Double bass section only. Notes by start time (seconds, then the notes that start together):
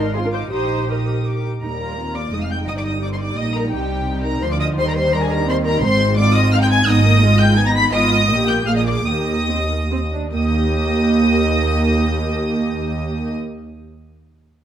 Already playing: G#1
0.52 A#1
1.62 D#2
2.32 F1
2.68 G1
3.38 A#1
3.73 C2
4.42 D2
4.76 D#2
5.82 G#1
6.87 G#1
7.94 G#1
8.29 A#1
8.68 A#1
9.06 D#2
10.33 D#2